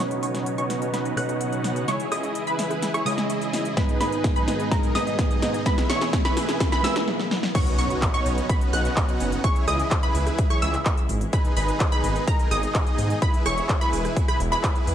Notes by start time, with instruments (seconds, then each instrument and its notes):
0.00 clean electric guitar B2 F#3 C#4 D#4 B4, analog synth pad C#3 F#3 B3 D#4, supersaw synth B3 C#4 D#4 F#4 C#5, synth pluck C#6, riser
0.11 closed hi-hat
0.23 detuned saw bass B1, supersaw synth B3 C#4 D#4 F#4 C#5, synth pluck C#6, open hi-hat
0.35 snare, closed hi-hat
0.46 closed hi-hat
0.58 supersaw synth B3 C#4 D#4 F#4 C#5, synth pluck C#6, closed hi-hat
0.70 detuned saw bass B1, snare, open hi-hat
0.82 closed hi-hat
0.94 supersaw synth B3 C#4 D#4 F#4 B4, synth pluck B5, snare, closed hi-hat
1.05 closed hi-hat
1.16 detuned saw bass B1, clean electric guitar B2 F#3 C#4 D#4 B4, supersaw synth B3 C#4 D#4 F#4 F#5, synth pluck F#6, cross-stick, open hi-hat
1.29 closed hi-hat
1.41 closed hi-hat
1.53 closed hi-hat
1.64 detuned saw bass F#1, snare, open hi-hat
1.76 closed hi-hat
1.88 clean electric guitar C#3 G#3 C#4 E4 C#5, analog synth pad E3 G#3 E4, supersaw synth E4 G#4 C#5, synth pluck C#6, snare, closed hi-hat
2.00 closed hi-hat
2.12 detuned saw bass C#2, supersaw synth E4 G#4 D#5, synth pluck D#6, cross-stick, open hi-hat
2.23 closed hi-hat
2.35 closed hi-hat
2.47 supersaw synth E4 G#4 B4, synth pluck B5, closed hi-hat
2.59 detuned saw bass C#2, snare, open hi-hat
2.71 cross-stick, closed hi-hat
2.82 snare, closed hi-hat
2.94 supersaw synth E4 G#4 C#5, synth pluck C#6, cross-stick, closed hi-hat
3.05 detuned saw bass C#2, clean electric guitar C#3 G#3 C#4 E4 C#5, supersaw synth E4 G#4 D#5, synth pluck D#6, open hi-hat
3.18 snare, closed hi-hat
3.30 closed hi-hat
3.42 closed hi-hat
3.53 detuned saw bass G#1, snare, open hi-hat
3.65 closed hi-hat
3.76 clean electric guitar G#2 G#3 B3 D#4 B4, analog synth pad B2 D#3 D#4, supersaw synth D#4 G#4 B4, synth pluck B5, kick, snare, closed hi-hat
3.89 closed hi-hat
4.01 detuned saw bass G#1, supersaw synth D#4 G#4 B4, synth pluck B5, snare, open hi-hat
4.12 closed hi-hat
4.24 kick, snare, closed hi-hat
4.36 supersaw synth D#4 G#4 B4, synth pluck B5, closed hi-hat
4.48 detuned saw bass G#1, snare, open hi-hat
4.60 closed hi-hat
4.71 supersaw synth G#4, synth pluck A#5, kick, snare, closed hi-hat
4.83 closed hi-hat
4.94 detuned saw bass G#1, clean electric guitar G#2 G#3 B3 D#4 B4, supersaw synth D#4 G#4 D#5, synth pluck D#6, snare, open hi-hat
5.07 closed hi-hat
5.19 kick, snare, closed hi-hat
5.31 closed hi-hat
5.42 detuned saw bass G#2, snare, open hi-hat
5.54 closed hi-hat
5.65 analog synth pad E3 G#3 E4, clean electric guitar G#3 B3 E4 B4, supersaw synth E4 G#4 B4, synth pluck B5, kick, snare, closed hi-hat
5.78 snare, closed hi-hat
5.90 detuned saw bass E1, supersaw synth E4 G#4 C#5, synth pluck C#6, snare, open hi-hat
6.01 snare, closed hi-hat
6.13 kick, snare, closed hi-hat
6.25 supersaw synth E4 G#4 B4, synth pluck B5, snare, closed hi-hat
6.37 detuned saw bass E1, snare, open hi-hat
6.49 snare, closed hi-hat
6.60 kick, snare, closed hi-hat
6.72 supersaw synth E4 G#4 B4, synth pluck B5, snare, closed hi-hat
6.83 detuned saw bass E1, clean electric guitar G#3 B3 E4 B4, supersaw synth E4 G#4 E5, synth pluck E6, snare, open hi-hat
6.96 snare, closed hi-hat
7.08 snare
7.20 snare
7.31 snare
7.43 snare
7.55 analog synth pad C#3 F#3 B3 D#4, supersaw synth B3 C#4 D#4 F#4 C#5, synth pluck C#6, kick, closed hi-hat, crash, impact
7.67 closed hi-hat
7.78 detuned saw bass B1, supersaw synth B3 C#4 D#4 F#4 C#5, synth pluck C#6, open hi-hat
7.90 closed hi-hat
8.02 kick, clap, closed hi-hat
8.14 supersaw synth B3 C#4 D#4 F#4 C#5, synth pluck C#6, closed hi-hat
8.26 detuned saw bass B1, open hi-hat
8.38 closed hi-hat
8.49 supersaw synth B3 C#4 D#4 F#4 B4, synth pluck B5, kick, closed hi-hat
8.61 closed hi-hat
8.73 detuned saw bass B1, supersaw synth B3 C#4 D#4 F#4 F#5, synth pluck F#6, cross-stick, open hi-hat
8.85 closed hi-hat
8.97 kick, clap, closed hi-hat
9.09 closed hi-hat
9.20 detuned saw bass F#1, open hi-hat
9.32 closed hi-hat
9.44 analog synth pad E3 G#3 E4, supersaw synth E4 G#4 C#5, synth pluck C#6, kick, closed hi-hat
9.56 closed hi-hat
9.68 detuned saw bass C#2, supersaw synth E4 G#4 D#5, synth pluck D#6, cross-stick, open hi-hat
9.79 closed hi-hat
9.91 kick, clap, closed hi-hat
10.03 supersaw synth E4 G#4 B4, synth pluck B5, closed hi-hat
10.15 detuned saw bass C#2, open hi-hat
10.27 cross-stick, closed hi-hat
10.38 kick, closed hi-hat
10.50 supersaw synth E4 G#4 C#5, synth pluck C#6, cross-stick, closed hi-hat
10.62 detuned saw bass C#2, supersaw synth E4 G#4 E5, synth pluck E6, open hi-hat
10.74 clap, closed hi-hat
10.86 kick, clap, closed hi-hat
10.98 closed hi-hat
11.09 detuned saw bass G#1, open hi-hat
11.21 closed hi-hat
11.33 analog synth pad B2 D#3 D#4, supersaw synth D#4 G#4 B4, synth pluck B5, kick, closed hi-hat
11.45 closed hi-hat
11.57 detuned saw bass G#1, supersaw synth D#4 G#4 B4, synth pluck B5, open hi-hat
11.68 closed hi-hat
11.80 kick, clap, closed hi-hat
11.92 supersaw synth D#4 G#4 B4, synth pluck B5, closed hi-hat
12.04 detuned saw bass G#1, open hi-hat
12.16 closed hi-hat
12.28 supersaw synth D#4 G#4 A#4, synth pluck A#5, kick, closed hi-hat
12.39 closed hi-hat
12.51 detuned saw bass G#1, supersaw synth D#4 G#4 D#5, synth pluck D#6, cross-stick, open hi-hat
12.63 closed hi-hat
12.75 kick, clap, closed hi-hat
12.87 closed hi-hat
12.98 detuned saw bass G#2, open hi-hat
13.10 closed hi-hat
13.22 analog synth pad E3 G#3 E4, supersaw synth E4, synth pluck B5, kick, closed hi-hat
13.34 closed hi-hat
13.46 detuned saw bass E1, supersaw synth E4 G#4 C#5, synth pluck C#6, cross-stick, open hi-hat
13.58 closed hi-hat
13.69 kick, clap, closed hi-hat
13.81 supersaw synth E4 G#4 B4, synth pluck B5, closed hi-hat
13.93 detuned saw bass E1, open hi-hat
14.05 cross-stick, closed hi-hat
14.17 kick, closed hi-hat
14.28 supersaw synth E4 G#4 B4, synth pluck B5, cross-stick, closed hi-hat
14.40 detuned saw bass E1, open hi-hat
14.52 supersaw synth E4 G#4 B4, synth pluck B5, clap, closed hi-hat
14.64 kick, clap, closed hi-hat
14.76 closed hi-hat
14.87 detuned saw bass E2, open hi-hat